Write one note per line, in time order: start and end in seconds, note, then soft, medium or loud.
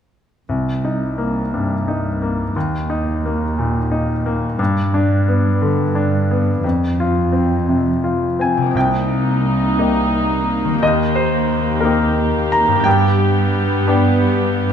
0.48 2.51 C2 soft
0.48 2.52 C2 soft
0.85 1.39 D#4 soft
1.18 1.73 A#3 soft
1.54 2.08 G2 soft
1.88 2.42 D#4 soft
2.22 2.56 A#3 soft
2.56 4.55 D#2 soft
2.56 4.56 D#2 soft
2.90 3.44 D#4 soft
3.25 3.79 A#3 soft
3.59 4.12 A#2 soft
3.92 4.46 D#4 soft
4.26 4.59 A#3 soft
4.59 6.60 G2 soft
4.94 5.48 D4 soft
5.28 5.82 B3 soft
5.62 6.16 D3 soft
5.95 6.50 D4 soft
6.31 6.65 B3 soft
6.64 8.71 F2 soft
6.64 8.55 F2 soft
7.00 7.55 F4 soft
7.32 7.89 C4 soft
7.69 8.25 C3 soft
8.04 8.61 F4 soft
8.39 8.75 C4 soft
8.39 8.73 G#5 soft
8.57 10.76 C3 soft
8.62 10.67 A#3 soft
8.66 10.72 D#4 soft
8.71 9.75 C2 soft
8.71 10.77 G4 soft
8.75 10.78 C2 soft
8.75 12.82 A#3 soft
8.75 10.79 D#4 soft
8.75 10.79 G5 soft
9.78 10.78 A#3 soft
9.78 10.78 D#4 soft
9.78 10.78 G4 soft
10.64 12.79 D#3 soft
10.69 12.82 A#3 soft
10.73 12.84 D#4 soft
10.78 12.79 G4 soft
10.82 12.82 D#2 soft
10.82 11.81 D#2 soft
10.82 14.73 G4 soft
10.82 11.14 D#5 soft
11.15 11.79 C5 soft
11.80 12.81 A#3 soft
11.80 12.82 D#4 soft
11.80 12.46 A#4 soft
11.85 12.82 G4 soft
12.52 12.83 A#5 medium
12.67 14.73 G2 soft
12.71 14.73 B3 soft
12.71 14.73 D4 soft
12.80 14.73 G4 soft
12.80 14.73 G5 medium
12.85 13.84 G2 soft
12.85 14.73 G2 soft
12.85 14.73 B3 soft
13.87 14.73 B3 soft
13.87 14.73 D4 soft
13.87 14.73 G4 soft
14.69 14.73 F2 soft